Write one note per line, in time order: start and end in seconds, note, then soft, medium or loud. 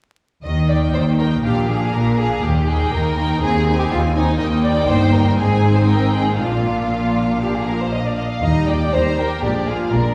0.43 0.88 D#2 soft
0.43 0.88 D#3 soft
0.43 0.67 D#5 soft
0.69 1.18 A#3 soft
0.69 1.18 D#4 soft
0.69 0.77 D5 soft
0.69 1.18 G5 soft
0.94 1.38 D#2 soft
0.94 1.39 D#3 soft
0.94 1.02 C5 soft
1.19 1.43 A#3 soft
1.19 1.44 D#4 soft
1.19 1.27 A#4 soft
1.19 1.43 G5 soft
1.44 1.88 A#1 soft
1.44 1.89 A#2 soft
1.44 1.69 A#3 soft
1.44 1.69 D4 soft
1.44 1.68 G4 soft
1.44 1.68 F5 soft
1.69 2.19 A#3 soft
1.69 2.19 D4 soft
1.69 1.94 G#4 soft
1.69 2.18 F5 soft
1.93 2.38 A#1 soft
1.93 2.38 A#2 soft
1.93 2.19 A#4 soft
2.17 2.44 A#3 soft
2.17 2.44 D4 soft
2.17 2.43 G#4 soft
2.17 2.44 F5 soft
2.43 2.88 D#2 soft
2.43 2.68 G4 soft
2.68 3.17 A#3 soft
2.68 3.17 D#4 soft
2.68 2.93 G#4 medium
2.68 3.17 G5 soft
2.93 3.37 D#2 soft
2.93 3.41 A#4 medium
3.18 3.42 A#3 soft
3.18 3.42 D#4 soft
3.18 3.42 G5 soft
3.41 3.85 D#2 soft
3.41 3.86 D#2 medium
3.41 3.67 C4 soft
3.41 3.67 D#4 soft
3.41 3.78 G#4 medium
3.41 3.66 G#5 soft
3.67 4.15 C4 soft
3.67 4.15 D#4 soft
3.67 4.14 G#5 soft
3.79 3.84 G4 medium
3.91 4.34 D#2 soft
3.91 3.99 F4 medium
4.15 4.40 C4 soft
4.15 4.39 D#4 medium
4.15 4.40 D#4 soft
4.15 4.39 G#5 soft
4.38 4.86 D#2 soft
4.38 4.86 D#2 medium
4.38 5.35 A#3 soft
4.38 5.35 D#4 soft
4.38 4.46 D#5 medium
4.38 5.35 G5 soft
4.63 4.88 D5 medium
4.88 5.39 G1 soft
4.88 5.39 G2 soft
4.88 5.13 C5 medium
5.13 5.38 A#4 medium
5.38 6.39 G#1 soft
5.38 6.40 G#2 soft
5.38 6.40 C4 soft
5.38 6.38 D#4 soft
5.38 5.75 G#4 soft
5.38 5.88 G#5 soft
5.76 5.89 C5 soft
5.88 6.13 A#4 soft
5.88 6.39 G5 soft
6.14 6.39 G#4 soft
6.38 8.23 A#1 soft
6.38 8.23 A#2 soft
6.38 8.20 A#3 soft
6.38 8.24 D4 soft
6.38 7.39 F4 soft
6.38 8.20 F5 soft
7.41 7.54 G4 soft
7.54 7.67 G#4 soft
7.67 7.80 A#4 soft
7.80 7.93 C5 soft
7.92 8.05 D#5 soft
8.06 8.19 D5 soft
8.18 8.31 D#5 soft
8.30 8.43 F5 soft
8.43 8.86 D#2 soft
8.43 8.85 D#3 soft
8.43 8.68 G3 soft
8.43 8.68 D#4 soft
8.43 8.68 D#5 soft
8.43 8.67 A#5 soft
8.67 8.94 A#3 soft
8.67 8.94 G4 soft
8.67 8.93 D5 medium
8.67 8.93 G5 soft
8.93 9.35 D#2 soft
8.93 9.35 D#3 soft
8.93 9.19 G3 soft
8.93 9.18 D#4 soft
8.93 9.18 C5 medium
8.93 9.18 A#5 soft
9.19 9.43 A#3 soft
9.19 9.43 G4 soft
9.19 9.43 A#4 soft
9.19 9.43 G5 soft
9.42 9.84 A#1 soft
9.42 9.84 A#2 soft
9.42 9.66 G#3 soft
9.42 9.66 D4 soft
9.42 9.67 G4 soft
9.42 9.66 D5 soft
9.67 9.93 A#3 soft
9.67 9.93 F4 soft
9.67 9.93 G#4 soft
9.67 9.92 F5 soft
9.91 10.14 A#1 soft
9.91 10.14 A#2 soft
9.91 10.14 G#3 soft
9.91 10.14 D4 soft
9.91 10.14 A#4 soft
9.91 10.14 D5 soft